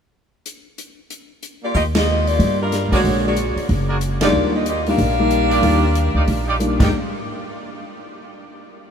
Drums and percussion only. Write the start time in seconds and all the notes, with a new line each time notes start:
0.46 closed hi-hat
0.78 closed hi-hat
1.10 closed hi-hat
1.43 closed hi-hat
1.75 kick, open hi-hat
1.95 snare, ride
2.27 open hi-hat
2.40 kick, open hi-hat
2.72 snare, closed hi-hat
2.92 kick, open hi-hat
3.05 kick, open hi-hat
3.36 closed hi-hat
3.57 open hi-hat
3.69 kick, open hi-hat
4.01 closed hi-hat
4.21 snare, ride
4.66 closed hi-hat
4.86 open hi-hat
4.98 kick, open hi-hat
5.31 closed hi-hat
5.51 open hi-hat
5.63 kick, open hi-hat
5.95 closed hi-hat
6.28 kick, open hi-hat
6.60 closed hi-hat
6.80 kick, snare, crash